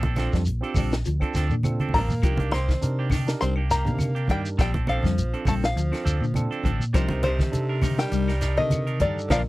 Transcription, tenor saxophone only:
1.95 A#3
2.53 C4
3.42 C4
3.70 A#3
4.30 G3
4.59 G3
4.88 F3
5.48 A3
5.63 F3
6.95 C3
7.26 C3
8.01 G3
8.59 D#3
9.01 D3
9.30 F3

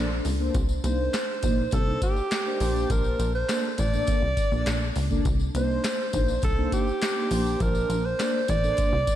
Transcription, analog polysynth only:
Already playing: C5
0.40 A#3 D4 A4 C5
0.84 A#3 D4 D#4 C5
1.43 A#3 D4 D#4 C5
1.86 A#3 D4 D#4 C5
2.46 A#3 D4 D#4 C5
2.60 A#3 D4 C5 A5
3.48 A#3 D4 A4 C5
3.92 A#3 D4 A4 D5
4.51 A#3 D4 A4 D5
5.10 A#3 D4 A4 D5
5.54 A#3 D4 D#4 C5
6.13 A#3 D4 D#4 C5
6.57 A#3 D4 D#4 C5
7.16 A#3 D4 D#4 C5
7.31 A#3 D4 C5 A5
8.19 A#3 D4 A4 D5
8.63 A#3 D4 A4 C5

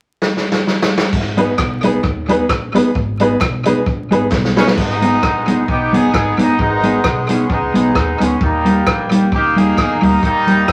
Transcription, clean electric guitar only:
1.37 G#3 B3 D#4 G#4
1.83 G#3 B3 D#4 G#4
2.28 G#3 B3 D#4 G#4
2.74 G#3 B3 D#4 G#4
3.20 G#3 B3 D#4 G#4
3.66 G#3 B3 D#4 G#4
4.11 G#3 B3 D#4 G#4
4.56 G#3 B3 D#4 G#4
5.02 G#3 B3 D#4 G#4
5.47 G#3 B3 D#4 G#4
5.93 G#3 B3 D#4 G#4
6.38 G#3 B3 D#4 G#4
6.83 G#3 B3 D#4 G#4
7.29 G#3 B3 D#4 G#4
7.74 G#3 B3 D#4 G#4
8.20 G#3 B3 D#4 G#4
8.65 G3 A#3 D#4 G4
9.11 G3 A#3 D#4 G4
9.56 G3 A#3 D#4 G4
10.01 G3 A#3 D#4 G4
10.47 G3 A#3 D#4 G4

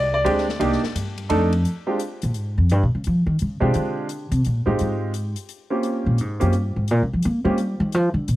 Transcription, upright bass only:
Already playing: C2
0.25 D2
0.60 C2
0.83 muted upright bass stroke
0.95 G2
1.30 F2
2.23 A#2
2.37 G#2
2.58 F2
2.71 G2
2.83 A#2
2.95 C#3
3.07 F3
3.27 D#3
3.42 C#3
3.61 C3
3.75 D3
4.31 C3
4.46 A#2
4.67 A2
4.81 G#2
6.06 A#2
6.20 G#2
6.42 F#2
6.56 G2
6.76 G#2
6.91 A#2
7.13 F3
7.25 A#3
7.45 G#3
7.59 G3
7.80 D#3
7.94 F3
8.14 D3
8.28 A#2

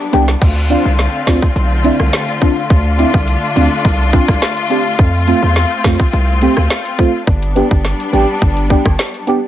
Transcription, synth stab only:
0.12 B3 D4 G4
0.69 C4 D4 F4
1.26 C4 D4 F4
1.84 C4 D4 E4
2.41 C4 D4 F4
2.98 C4 D4 E4
3.55 C4 D4 F4
4.13 C4 D4 F4
4.70 C4 D4 G4
5.27 A3 C4 F4
5.84 A3 C4 F4
6.41 A3 C4 G4
6.98 A3 C4 F4
7.55 B3 D4 G4
8.12 B3 D4 G4
8.70 B3 D4 G4
9.27 B3 D4 G4

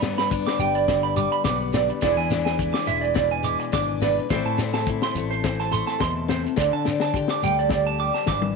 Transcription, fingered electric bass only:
Already playing: G2
0.59 G1
1.45 B1
2.02 E1
2.16 E2
2.88 E1
3.73 G#1
4.30 A1
4.45 A2
5.15 A1
6.01 E2
6.58 D2
6.73 D3
7.43 D2
8.28 G#1

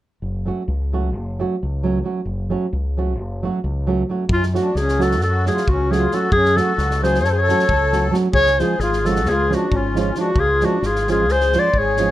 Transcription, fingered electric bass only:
0.22 F#1
0.68 C#2
1.16 F#1
1.63 C#2
2.25 F#1
2.73 C#2
3.19 F#1
3.64 C#2
4.29 F#2
4.75 C#2
5.21 F#2
5.68 C#2
6.32 F#2
6.78 C#2
7.24 F#2
7.71 C#2
8.34 C#2
8.79 G#1
9.27 C#2
9.72 G#1
10.35 C#2
10.82 G#1
11.27 C#2
11.75 G#1

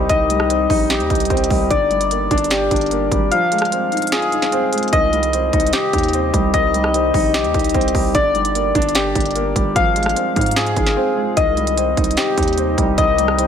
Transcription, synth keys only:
Already playing: G4
0.09 D#5
0.90 G4
1.70 D5
2.51 G4
3.31 F5
4.12 G#4
4.93 D#5
5.73 G4
6.54 D#5
7.34 G4
8.15 D5
8.95 G4
9.76 F5
10.56 G#4
11.37 D#5
12.17 G4
12.98 D#5

